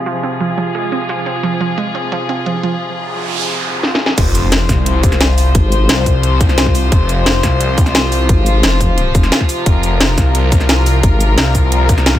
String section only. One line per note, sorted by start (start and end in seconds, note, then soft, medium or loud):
0.00 4.14 C3 medium
0.00 4.14 F3 medium
0.00 4.14 F4 medium
0.00 4.15 G#4 medium
4.18 12.19 C3 medium
4.18 12.19 F3 medium
4.18 12.19 F4 medium
4.18 9.64 C5 medium
9.66 12.19 A#4 medium